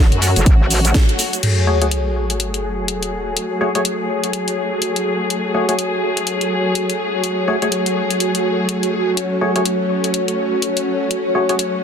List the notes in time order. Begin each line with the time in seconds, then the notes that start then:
Already playing: F#3 A3 F#4 C#5
0.12 F#2, closed hi-hat
0.22 open hi-hat, cabasa
0.36 F#1, closed hi-hat, cabasa
0.46 A1, kick, closed hi-hat, cabasa
0.70 open hi-hat, cabasa
0.85 closed hi-hat, cabasa
0.94 kick, snare, closed hi-hat, cabasa
1.09 closed hi-hat
1.19 open hi-hat, cabasa
1.33 closed hi-hat, cabasa
1.43 F#3 A3 F#4 G#4, closed hi-hat, crash, sub drop
1.67 A3 F#4 G#4 C#5
1.82 A3 F#4 G#4 C#5, closed hi-hat
1.91 closed hi-hat
2.20 C#5
2.30 closed hi-hat
2.40 closed hi-hat
2.54 closed hi-hat
2.88 closed hi-hat
3.03 closed hi-hat
3.37 closed hi-hat
3.61 A3 F#4 G#4 C#5
3.75 A3 F#4 G#4 C#5, closed hi-hat
3.85 closed hi-hat
4.24 closed hi-hat
4.33 closed hi-hat
4.48 closed hi-hat
4.82 closed hi-hat
4.96 closed hi-hat
5.30 closed hi-hat
5.54 A3 F#4 G#4 C#5
5.69 A3 F#4 G#4 C#5, closed hi-hat
5.79 closed hi-hat
6.17 closed hi-hat
6.27 closed hi-hat
6.41 closed hi-hat
6.75 closed hi-hat
6.90 closed hi-hat
7.24 closed hi-hat
7.48 A3 F#4 G#4 C#5
7.62 A3 F#4 G#4 C#5, closed hi-hat
7.72 closed hi-hat
7.86 closed hi-hat
8.11 closed hi-hat
8.20 closed hi-hat
8.35 closed hi-hat
8.69 closed hi-hat
8.83 closed hi-hat
9.17 C#4, closed hi-hat
9.41 A3 F#4 G#4 C#5
9.56 A3 F#4 G#4 C#5, closed hi-hat
9.65 closed hi-hat
10.04 closed hi-hat
10.14 closed hi-hat
10.28 closed hi-hat
10.62 closed hi-hat
10.77 closed hi-hat
11.11 closed hi-hat
11.35 A3 F#4 G#4 C#5
11.49 A3 F#4 G#4 C#5, closed hi-hat
11.59 closed hi-hat